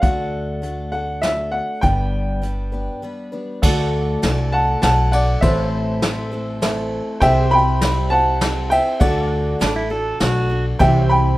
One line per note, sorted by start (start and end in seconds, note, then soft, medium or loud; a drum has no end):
0.02 1.60 D2 medium
0.02 0.63 D3 medium
0.02 0.61 A3 medium
0.02 0.62 D4 medium
0.02 0.62 F#4 medium
0.02 0.63 A4 medium
0.02 0.90 F#5 medium
0.02 kick loud
0.02 closed hi-hat medium
0.62 0.93 A3 medium
0.62 0.93 D4 medium
0.62 0.92 F#4 medium
0.62 0.91 A4 medium
0.62 closed hi-hat medium
0.92 1.21 D4 soft
0.92 1.22 F#4 soft
0.92 1.23 A4 soft
0.92 1.24 F#5 medium
1.22 1.83 A3 medium
1.22 1.83 D4 medium
1.22 1.83 F#4 medium
1.22 1.84 A4 medium
1.22 1.53 E5 medium
1.22 snare medium
1.22 closed hi-hat medium
1.52 1.83 F#5 medium
1.81 2.88 G1 medium
1.81 2.43 G2 medium
1.81 2.43 D3 medium
1.81 2.41 G3 medium
1.81 2.41 B3 medium
1.81 2.42 D4 medium
1.81 2.43 B4 medium
1.81 2.98 G5 medium
1.81 kick medium
1.81 closed hi-hat medium
2.42 2.73 G3 medium
2.42 2.72 B3 medium
2.42 2.72 D4 medium
2.42 2.71 B4 medium
2.42 closed hi-hat medium
2.72 3.01 G3 soft
2.72 3.02 B3 soft
2.72 3.03 D4 soft
2.72 3.03 B4 medium
3.02 3.33 G3 medium
3.02 3.32 B3 medium
3.02 3.32 D4 medium
3.02 3.31 B4 medium
3.32 3.62 G3 soft
3.32 3.63 B3 medium
3.32 3.62 D4 medium
3.32 3.63 B4 medium
3.62 4.15 D2 loud
3.62 4.23 D3 medium
3.62 4.22 A3 loud
3.62 4.22 D4 loud
3.62 4.23 F#4 loud
3.62 5.39 A4 medium
3.62 5.41 A4 medium
3.62 4.24 A4 loud
3.62 5.39 D5 medium
3.62 5.42 D5 medium
3.62 5.39 F#5 medium
3.62 5.42 F#5 medium
3.62 kick loud
3.62 crash loud
4.22 4.74 C2 medium
4.22 4.81 A3 medium
4.22 4.81 D4 medium
4.22 4.82 F#4 medium
4.22 4.82 A4 medium
4.22 snare loud
4.22 ride medium
4.52 4.81 F#5 medium
4.52 4.80 A5 loud
4.82 5.34 B1 medium
4.82 5.12 A3 medium
4.82 5.13 D4 medium
4.82 5.12 F#4 medium
4.82 5.11 A4 medium
4.82 5.10 F#5 medium
4.82 5.13 A5 loud
4.82 snare medium
4.82 ride medium
5.12 5.43 D4 soft
5.12 5.43 F#4 soft
5.12 5.42 A4 medium
5.12 5.41 D5 medium
5.12 5.40 F#5 medium
5.12 ride medium
5.41 6.99 A1 loud
5.41 6.02 A2 medium
5.41 7.21 E3 medium
5.41 6.01 A3 medium
5.41 6.03 C4 medium
5.41 6.03 E4 medium
5.41 6.59 A4 medium
5.41 7.21 A4 medium
5.41 6.03 A4 medium
5.41 6.60 C5 medium
5.41 6.88 C5 medium
5.41 5.70 D5 medium
5.41 6.87 E5 medium
5.41 6.60 E5 medium
5.41 kick loud
5.41 ride medium
5.45 5.70 F#5 medium
5.70 7.21 C5 medium
5.70 7.22 E5 medium
6.02 6.32 A3 medium
6.02 6.32 C4 medium
6.02 6.31 E4 medium
6.02 6.30 A4 medium
6.02 snare medium
6.02 ride medium
6.32 6.60 A3 soft
6.32 6.61 C4 soft
6.32 6.62 E4 medium
6.32 6.62 A4 medium
6.62 7.21 A3 medium
6.62 7.21 C4 medium
6.62 7.21 E4 medium
6.62 7.22 A4 medium
6.62 7.23 A4 medium
6.62 7.20 C5 medium
6.62 7.20 E5 medium
6.62 snare loud
6.62 ride medium
7.20 8.78 C2 medium
7.20 7.82 C3 medium
7.20 7.80 G3 medium
7.20 7.81 C4 medium
7.20 7.81 E4 medium
7.20 8.97 G4 medium
7.20 7.47 A4 medium
7.20 8.97 C5 medium
7.20 7.82 C5 medium
7.20 9.00 C5 medium
7.20 8.98 E5 medium
7.20 7.50 E5 medium
7.20 9.00 E5 medium
7.20 7.52 G5 loud
7.20 kick loud
7.20 ride medium
7.47 9.00 G4 medium
7.51 8.09 G5 medium
7.51 8.13 B5 loud
7.81 8.11 G3 medium
7.81 8.12 C4 medium
7.81 8.11 E4 medium
7.81 8.10 C5 medium
7.81 snare medium
7.81 ride medium
8.10 8.41 C4 soft
8.10 8.41 E4 soft
8.10 8.41 C5 soft
8.10 8.68 F#5 medium
8.10 8.67 A5 loud
8.41 8.71 G3 medium
8.41 8.72 C4 medium
8.41 8.71 E4 medium
8.41 8.70 C5 medium
8.41 snare medium
8.41 ride medium
8.70 9.01 C4 soft
8.70 9.01 E4 soft
8.70 9.01 C5 medium
8.70 9.00 E5 medium
8.70 9.02 G5 medium
8.70 ride medium
9.00 9.53 D2 medium
9.00 9.60 D3 loud
9.00 9.58 A3 medium
9.00 9.59 D4 medium
9.00 10.76 F#4 medium
9.00 9.60 F#4 loud
9.00 10.77 A4 medium
9.00 10.79 A4 medium
9.00 9.60 A4 loud
9.00 10.77 D5 medium
9.00 9.57 D5 medium
9.00 10.79 D5 medium
9.00 9.56 F#5 medium
9.00 kick loud
9.00 ride medium
9.04 9.29 E5 medium
9.29 10.80 F#5 medium
9.59 10.12 A1 medium
9.59 9.90 A3 medium
9.59 9.91 D4 medium
9.59 9.90 F#4 medium
9.59 9.89 A4 medium
9.59 snare medium
9.59 ride medium
9.76 9.91 E4 medium
9.90 10.20 D4 soft
9.90 10.20 F#4 soft
9.90 10.20 A4 medium
10.20 10.72 B1 medium
10.20 10.50 A3 medium
10.20 10.51 D4 medium
10.20 10.50 F#4 medium
10.20 10.48 A4 medium
10.20 snare medium
10.20 ride medium
10.49 10.79 D4 soft
10.49 10.80 F#4 medium
10.49 10.80 A4 medium
10.79 11.38 C2 loud
10.79 11.38 C3 medium
10.79 11.38 E3 medium
10.79 11.38 G3 medium
10.79 11.38 C4 medium
10.79 11.38 E4 medium
10.79 11.38 G4 medium
10.79 11.38 C5 medium
10.79 11.07 D5 medium
10.79 11.08 E5 medium
10.79 11.08 F#5 medium
10.79 11.09 G5 medium
10.79 kick loud
10.79 ride medium
11.07 11.38 C5 medium
11.07 11.38 E5 medium
11.07 11.38 B5 loud
11.11 11.38 G5 medium